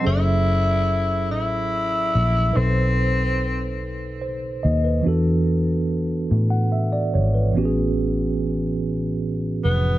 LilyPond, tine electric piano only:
\new Staff \with { instrumentName = "Tine electric piano" } { \time 6/8 \key fis \minor \tempo 4. = 48 << { c''16 r2 r8. | r2 c''8 dis''16 b'16~ | b'16 r4. fis''16 e''16 d''16 cis''16 b'16~ | b'16 r2 r8. | } \\ { <fis cis' gis' a' e''>2. | <b, dis' a' b' c''>2. | <e b d' fis' a'>2. | <a, e b cis' fis' g' gis'>2. | } >> }